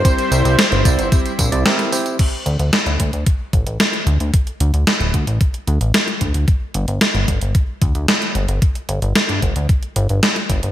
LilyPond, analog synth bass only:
\new Staff \with { instrumentName = "Analog synth bass" } { \clef bass \time 4/4 \key g \dorian \tempo 4 = 112 r8 c,16 c,16 r16 g,,16 c,16 g,,16 r8 bes,,16 c,16 r4 | r8 d,16 d,16 r16 d,16 d,16 d,16 r8 a,,16 a,,16 r8 d,16 d,16 | r8 d,16 d,16 r16 d,,16 d,16 a,,16 r8 d,16 a,,16 r8 d,16 d,16 | r8 g,,16 g,,16 r16 g,,16 g,,16 g,,16 r8 d,16 d,16 r8 g,,16 g,,16 |
r8 g,,16 g,,16 r16 g,16 g,,16 d,16 r8 g,,16 g,,16 r8 g,,16 g,,16 | }